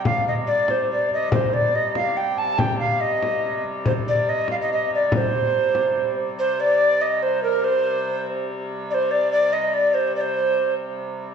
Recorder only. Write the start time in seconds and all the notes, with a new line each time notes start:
0.05 F5
0.28 D#5
0.47 D5
0.70 C5
0.91 D5
1.13 D#5
1.33 C5
1.53 D5
1.75 D#5
1.96 F5
2.17 G5
2.38 A5
2.58 G5
2.79 F5
3.00 D#5
3.86 C5
4.08 D5
4.29 D#5
4.51 F5
4.61 D#5
4.72 D#5
4.94 D5
5.15 C5
6.39 C5
6.60 D5
7.01 D#5
7.22 C5
7.43 A#4
7.64 C5
8.90 C5 D5
9.11 D5
9.32 D5
9.52 D#5
9.73 D5
9.94 C5
10.16 D5
10.20 C5